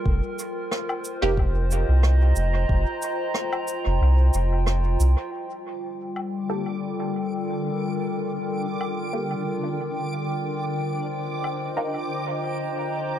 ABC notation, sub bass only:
X:1
M:4/4
L:1/16
Q:"Swing 16ths" 1/4=91
K:Gm
V:1 name="Sub bass" clef=bass
F,,, z6 F,,,4 C,,3 F,,,2 | F,,, z6 F,,, C,,2 F,,,4 C,, z | z16 | z16 |
z16 |]